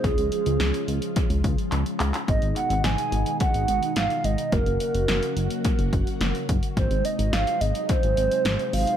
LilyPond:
<<
  \new Staff \with { instrumentName = "Soft synth lead" } { \time 4/4 \key aes \dorian \tempo 4 = 107 aes'8 aes'4. r2 | ees''8 ges''8 aes''4 ges''4 f''8 ees''8 | bes'8 bes'4. r2 | c''8 ees''8 f''8 ees''8 c''4. f''8 | }
  \new Staff \with { instrumentName = "String machine" } { \clef bass \time 4/4 \key aes \dorian <des f aes f'>1 | <ces ees aes>1 | <des ges bes ges'>1 | <c ges aes ees'>1 | }
  \new Staff \with { instrumentName = "Analog synth bass" } { \clef bass \time 4/4 \key aes \dorian des,16 des,16 r16 des,16 des,16 r16 des,16 r8 des,16 des,16 r16 des,16 r16 des,16 r16 | aes,,16 aes,,16 r16 aes,,16 aes,,16 r16 aes,,16 r8 aes,,16 aes,,16 r16 aes,,16 r16 aes,,16 r16 | ges,,16 ges,,16 r16 ges,,16 ges,,16 r16 ges,,16 r8 ges,,16 ges,,16 r16 ges,,16 r16 ges,,16 r16 | aes,,16 aes,,16 r16 aes,,16 aes,,16 r16 aes,,16 r8 aes,,16 aes,,16 r16 aes,,16 r16 aes,,16 r16 | }
  \new DrumStaff \with { instrumentName = "Drums" } \drummode { \time 4/4 <hh bd>16 hh16 hh16 hh16 <hh sn>16 hh16 hh16 hh16 <hh bd>16 hh16 <hh bd>16 hh16 <hc hh>16 hh16 <hc hh>16 <hc hh>16 | <hh bd>16 hh16 hh16 hh16 <hh sn>16 hh16 hh16 hh16 <hh bd>16 hh16 hh16 hh16 <hh sn>16 hh16 hh16 hh16 | <hh bd>16 hh16 hh16 hh16 <hh sn>16 hh16 hh16 hh16 <hh bd>16 hh16 <hh bd>16 hh16 <hh sn>16 hh16 <hh bd>16 hh16 | <hh bd>16 hh16 hh16 hh16 <hh sn>16 hh16 hh16 hh16 <hh bd>16 hh16 hh16 hh16 <hh sn>16 hh16 hho16 hh16 | }
>>